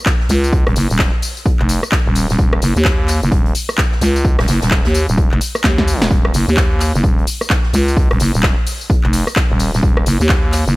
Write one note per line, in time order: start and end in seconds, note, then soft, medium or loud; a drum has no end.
0.05 kick loud
0.05 snare loud
0.05 clap loud
0.05 closed hi-hat loud
0.05 tambourine soft
0.20 snare soft
0.29 0.64 C#2 loud
0.29 closed hi-hat medium
0.29 open hi-hat medium
0.29 tambourine medium
0.44 tambourine soft
0.53 kick loud
0.53 closed hi-hat medium
0.67 0.74 D#1 loud
0.67 cross-stick medium
0.67 closed hi-hat soft
0.76 0.88 F#1 medium
0.76 closed hi-hat medium
0.76 open hi-hat loud
0.76 tambourine medium
0.90 1.11 D#1 loud
0.90 tambourine soft
0.99 kick loud
0.99 snare loud
0.99 clap loud
0.99 closed hi-hat medium
1.22 closed hi-hat medium
1.22 open hi-hat medium
1.22 tambourine medium
1.37 tambourine soft
1.46 kick loud
1.46 closed hi-hat medium
1.46 tambourine soft
1.59 1.81 F1 medium
1.59 clap soft
1.69 closed hi-hat medium
1.69 open hi-hat loud
1.69 tambourine medium
1.83 cross-stick medium
1.83 closed hi-hat soft
1.83 tambourine soft
1.92 kick loud
1.92 snare loud
1.92 clap loud
1.92 closed hi-hat medium
2.06 2.27 D#1 loud
2.15 closed hi-hat medium
2.15 open hi-hat medium
2.15 tambourine medium
2.30 2.37 D#1 loud
2.30 snare soft
2.30 tambourine soft
2.38 2.60 D#1 loud
2.38 kick loud
2.38 closed hi-hat medium
2.38 tambourine soft
2.53 cross-stick medium
2.62 2.74 F#1 medium
2.62 closed hi-hat medium
2.62 open hi-hat loud
2.62 tambourine medium
2.76 3.20 D#2 loud
2.76 tambourine soft
2.85 kick loud
2.85 snare loud
2.85 clap loud
2.85 closed hi-hat medium
2.85 tambourine soft
3.08 snare soft
3.08 clap soft
3.08 closed hi-hat medium
3.08 open hi-hat medium
3.08 tambourine medium
3.23 3.30 F#1 medium
3.23 tambourine soft
3.32 3.53 D#1 medium
3.32 kick loud
3.32 closed hi-hat medium
3.32 tambourine soft
3.46 closed hi-hat soft
3.55 closed hi-hat medium
3.55 open hi-hat loud
3.55 tambourine medium
3.69 cross-stick medium
3.69 tambourine soft
3.78 kick loud
3.78 snare loud
3.78 clap loud
3.78 closed hi-hat medium
3.78 tambourine soft
3.92 snare soft
4.01 4.37 C#2 loud
4.01 snare loud
4.01 closed hi-hat medium
4.01 open hi-hat medium
4.01 tambourine medium
4.15 snare soft
4.15 tambourine soft
4.25 kick loud
4.25 closed hi-hat medium
4.25 tambourine soft
4.39 4.46 D#1 loud
4.39 cross-stick medium
4.39 snare loud
4.39 closed hi-hat medium
4.48 4.60 F#1 loud
4.48 snare loud
4.48 closed hi-hat medium
4.48 open hi-hat loud
4.48 tambourine medium
4.62 4.83 D#1 loud
4.62 snare loud
4.62 closed hi-hat medium
4.62 tambourine soft
4.71 kick loud
4.71 snare medium
4.71 clap loud
4.71 tambourine soft
4.85 5.06 D#2 loud
4.85 snare loud
4.85 closed hi-hat medium
4.94 closed hi-hat medium
4.94 open hi-hat medium
4.94 tambourine medium
5.08 5.30 D#1 loud
5.08 tambourine soft
5.18 kick loud
5.18 closed hi-hat medium
5.18 tambourine soft
5.31 5.39 F1 loud
5.31 clap soft
5.41 closed hi-hat medium
5.41 open hi-hat loud
5.41 tambourine medium
5.55 cross-stick medium
5.55 closed hi-hat soft
5.55 tambourine soft
5.63 6.09 D#2 loud
5.63 kick loud
5.63 snare medium
5.63 snare loud
5.63 clap loud
5.63 closed hi-hat medium
5.63 tambourine soft
5.78 kick medium
5.78 snare medium
5.88 closed hi-hat medium
5.88 open hi-hat medium
5.88 tambourine medium
6.02 snare medium
6.02 tambourine soft
6.11 6.32 D#1 medium
6.11 kick loud
6.11 closed hi-hat medium
6.11 tambourine soft
6.25 cross-stick medium
6.33 6.46 F#1 medium
6.33 closed hi-hat medium
6.33 open hi-hat loud
6.33 tambourine medium
6.48 6.92 D#2 loud
6.48 tambourine soft
6.57 kick loud
6.57 snare loud
6.57 clap loud
6.57 closed hi-hat medium
6.57 tambourine soft
6.79 snare soft
6.79 clap soft
6.79 closed hi-hat medium
6.79 open hi-hat medium
6.79 tambourine medium
6.95 7.02 F#1 loud
6.95 tambourine soft
7.04 7.26 D#1 medium
7.04 kick loud
7.04 closed hi-hat medium
7.04 tambourine soft
7.18 closed hi-hat soft
7.27 closed hi-hat medium
7.27 open hi-hat loud
7.27 tambourine medium
7.41 cross-stick medium
7.41 tambourine soft
7.50 kick loud
7.50 snare loud
7.50 clap loud
7.50 closed hi-hat medium
7.50 tambourine soft
7.64 snare soft
7.73 8.09 C#2 loud
7.73 closed hi-hat medium
7.73 open hi-hat medium
7.73 tambourine medium
7.88 tambourine soft
7.97 kick loud
7.97 closed hi-hat medium
7.97 tambourine soft
8.11 8.19 D#1 loud
8.11 cross-stick medium
8.11 closed hi-hat soft
8.19 8.32 F#1 loud
8.19 closed hi-hat medium
8.19 open hi-hat loud
8.19 tambourine medium
8.34 8.55 D#1 loud
8.34 tambourine soft
8.43 kick loud
8.43 snare loud
8.43 clap loud
8.43 closed hi-hat medium
8.43 tambourine soft
8.66 closed hi-hat medium
8.66 open hi-hat loud
8.66 tambourine medium
8.81 tambourine soft
8.90 kick loud
8.90 closed hi-hat medium
8.90 tambourine soft
9.04 9.25 F1 medium
9.04 clap soft
9.13 closed hi-hat medium
9.13 open hi-hat loud
9.13 tambourine medium
9.27 cross-stick medium
9.27 closed hi-hat soft
9.27 tambourine soft
9.36 kick loud
9.36 snare loud
9.36 clap loud
9.36 closed hi-hat medium
9.36 tambourine soft
9.50 9.71 D#1 loud
9.59 closed hi-hat medium
9.59 open hi-hat loud
9.59 tambourine medium
9.74 9.81 D#1 loud
9.74 snare medium
9.74 tambourine soft
9.83 10.05 D#1 medium
9.83 kick loud
9.83 closed hi-hat medium
9.83 tambourine soft
9.97 cross-stick medium
10.06 10.18 F#1 medium
10.06 closed hi-hat medium
10.06 open hi-hat loud
10.06 tambourine medium
10.20 10.64 D#2 loud
10.20 tambourine soft
10.28 kick loud
10.28 snare loud
10.28 clap loud
10.28 closed hi-hat medium
10.28 tambourine soft
10.52 snare medium
10.52 clap soft
10.52 closed hi-hat medium
10.52 open hi-hat loud
10.52 tambourine medium
10.67 10.74 F#1 loud
10.67 tambourine soft